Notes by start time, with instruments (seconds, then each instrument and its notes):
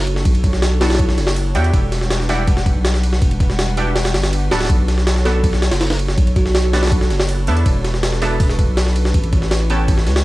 Already playing: sub bass F#1
0.07 analog synth pad D4 F#4 A4 C#5, ride
0.16 snare
0.25 sub bass B1, analog synth pad D4 F#4 A4 C#5, kick, ride
0.35 ride
0.44 kick, ride
0.53 snare
0.62 snare, ride
0.81 synth stab B3 D4 F#4 A4, kalimba E4, snare, ride
0.90 snare, ride
0.95 snare, ride
0.99 kick, ride
1.09 snare
1.18 sub bass F#1, snare, ride
1.27 snare
1.36 ride
1.55 sub bass E2, synth stab D4 E4 F#4 G4, analog synth pad D4 F#4 A4 C#5, ride
1.64 ride
1.74 sub bass E1, analog synth pad G3 D4 B4 F#5, kick, ride
1.92 snare, ride
2.01 snare
2.10 snare, ride
2.20 snare
2.29 synth stab D4 E4 F#4 G4, snare, ride
2.47 kick, ride
2.57 snare
2.66 kick, ride
2.76 sub bass B1
2.85 snare, ride
2.94 snare
3.03 analog synth pad D4 F#4 G4 B4, ride
3.13 snare
3.22 sub bass E1, analog synth pad G3 D4 B4 F#5, kick, ride
3.31 ride
3.40 kick, ride
3.50 snare
3.59 snare, ride
3.77 synth stab D4 E4 F#4 G4, ride
3.96 snare, ride
4.05 snare, ride
4.14 sub bass G1, analog synth pad D4 F#4 G4 B4, snare, ride
4.23 analog synth pad D4 F#4 G4 B4, snare, ride
4.33 ride
4.51 sub bass D1, synth stab B3 D4 F#4 A4, snare, ride
4.61 snare, ride
4.65 snare, ride
4.70 sub bass B1, analog synth pad D4 F#4 A4 C#5, kick, ride
4.88 snare, ride
4.98 snare
5.07 snare, ride
5.16 snare
5.25 synth stab B3 D4 F#4 A4, kalimba A4, snare, ride
5.44 kick, ride
5.53 snare
5.62 snare, ride
5.71 sub bass F#1, snare, ride
5.81 snare, ride
5.90 snare, ride
5.99 analog synth pad D4 F#4 A4 C#5, ride
6.08 snare
6.18 sub bass B1, analog synth pad D4 F#4 A4 C#5, kick, ride
6.27 ride
6.36 kalimba F#4, kick, ride
6.46 kalimba F#4, snare
6.55 snare, ride
6.73 synth stab B3 D4 F#4 A4, snare, ride
6.83 snare, ride
6.87 snare, ride
6.92 kick, ride
7.01 snare
7.10 sub bass F#1, snare, ride
7.20 snare
7.29 ride
7.47 sub bass E2, synth stab B3 D4 E4 A4, analog synth pad D4 F#4 A4 C#5, ride
7.57 ride
7.66 sub bass E1, analog synth pad D4 F#4 A4 B4, kick, ride
7.84 snare, ride
7.94 snare
8.03 snare, ride
8.13 snare
8.22 synth stab B3 D4 E4 A4, snare, ride
8.40 kick, ride
8.49 snare
8.59 kick, ride
8.68 sub bass B1
8.77 snare, ride
8.87 snare
8.96 analog synth pad D4 F#4 A4 B4, ride
9.05 snare
9.14 sub bass A1, analog synth pad E4 G4 B4 C#5, kick, ride
9.24 ride
9.33 kick, ride
9.42 snare
9.51 snare, ride
9.70 synth stab B3 C#4 G4 A4, ride
9.88 kick, ride
9.98 snare
10.07 sub bass C#2, analog synth pad E4 G4 B4 C#5, snare, ride
10.16 analog synth pad E4 G4 B4 C#5, snare